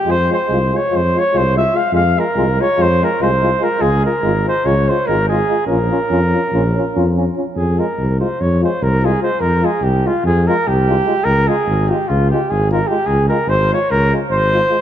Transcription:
<<
  \new Staff \with { instrumentName = "Flugelhorn" } { \time 9/8 \key f \phrygian \tempo 4. = 97 c''8 c''4 des''8 c''8 des''8 c''8 e''8 f''8 | f''8 bes'4 des''8 c''8 bes'8 c''4 bes'8 | aes'8 bes'4 c''8 des''8 c''8 bes'8 aes'4 | bes'2.~ bes'8 r4 |
aes'8 bes'4 c''8 des''8 c''8 bes'8 aes'8 c''8 | bes'8 aes'8 g'8 f'8 aes'8 bes'8 g'4. | bes'8 aes'4 g'8 f'8 g'8 aes'8 bes'8 g'8 | aes'8 bes'8 c''8 des''8 bes'8 r8 c''4. | }
  \new Staff \with { instrumentName = "Euphonium" } { \time 9/8 \key f \phrygian f'8 f'8 f'8 f'8 f'8 f'8 f'8 f'8 f'8 | f'8 f'8 f'8 f'8 f'8 f'8 f'8 f'8 f'8 | f'8 f'8 f'8 f'8 f'8 f'8 f'8 f'8 f'8 | f'8 f'8 f'8 f'8 f'8 f'8 f'8 f'8 f'8 |
r8 f'8 r8 f'8 r8 f'8 r8 f'8 f'8 | r8 f'8 r8 f'8 r8 f'8 r8 f'8 f'8 | r8 f'8 r8 f'8 r8 f'8 r8 f'8 f'8 | r8 f'8 r8 f'8 r8 f'8 r8 f'8 f'8 | }
  \new Staff \with { instrumentName = "Euphonium" } { \clef bass \time 9/8 \key f \phrygian aes8 aes8 aes8 aes8 aes8 aes8 aes8 aes8 aes8 | aes8 aes8 aes8 aes8 aes8 aes8 aes8 aes8 aes8 | aes8 aes8 aes8 aes8 aes8 aes8 aes8 aes8 aes8 | des'8 des'8 des'8 des'8 des'8 des'8 des'8 des'8 des'8 |
r8 aes8 r8 aes8 r8 aes8 r8 aes8 aes8 | r8 aes8 r8 aes8 r8 aes8 r8 aes8 aes8 | r8 aes8 r8 aes8 r8 aes8 r8 aes8 aes8 | r8 aes8 r8 aes8 r8 aes8 r8 aes8 aes8 | }
  \new Staff \with { instrumentName = "Tuba" } { \clef bass \time 9/8 \key f \phrygian f,4 c,4 f,4 c,4. | f,4 c,4 f,4 c,4. | des,4 aes,,4 des,4 aes,,4. | bes,,4 f,4 bes,,4 f,4. |
f,4 c,4 f,4 c,4. | f,4 c,4 f,4 c,4. | des,4 aes,,4 des,4 aes,,4. | des,4 aes,,4 des,4 aes,,4. | }
>>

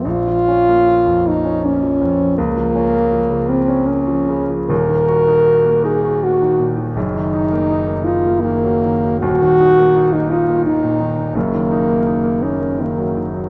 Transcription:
<<
  \new Staff \with { instrumentName = "French horn" } { \time 3/4 \key bes \minor \tempo 4 = 81 f'4. ees'8 des'4 | bes4. c'8 des'4 | bes'4. aes'8 ges'8. r16 | ees'4. f'8 bes4 |
\key ees \minor ges'4~ ges'16 ees'16 f'8 ees'4 | bes4. des'8 bes8. r16 | }
  \new Staff \with { instrumentName = "Grand piano" } { \clef bass \time 3/4 \key bes \minor bes,,16 f16 des'16 bes16 f16 f,16 bes16 des'16 bes16 f16 f,16 f16 | des,16 f16 des'16 bes16 f16 des16 bes16 des'16 bes16 f16 des16 f16 | <ees,, ees,>16 ees16 ges'16 ees'16 ges'16 bes16 ees'16 ges'16 bes16 ees16 bes,16 ees16 | <ges,, ges,>16 ees16 ees'16 bes16 ees'16 bes16 ees'16 bes16 ees16 ges16 ees16 ges16 |
\key ees \minor <ees,, ees,>16 ees16 ees'16 bes16 ees'16 bes16 ees'16 bes16 ees16 bes,16 ees16 bes,16 | <ges,, ges,>16 ees16 ees'16 bes16 ees'16 bes16 ees'16 bes16 ees16 ges16 ees16 ges16 | }
>>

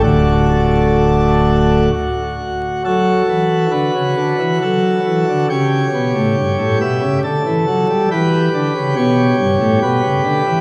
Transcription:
<<
  \new Staff \with { instrumentName = "Pipe organ" } { \time 3/4 \key d \major \tempo 4 = 68 << { <d,, d, a d' fis'>2 fis'4 | a'4 b'4 a'4 | cis''4. e''8 a'4 | b'4 cis''4 b'4 | } \\ { r2. | fis'2. | g'2 r4 | g'2. | } >> }
  \new Staff \with { instrumentName = "Pipe organ" } { \clef bass \time 3/4 \key d \major r2. | fis8 e8 d16 cis16 d16 e16 fis8 e16 d16 | cis8 b,16 a,16 g,16 a,16 b,16 cis16 d16 e16 fis16 g16 | e8 d16 cis16 b,8 g,16 a,16 b,16 cis16 d16 e16 | }
>>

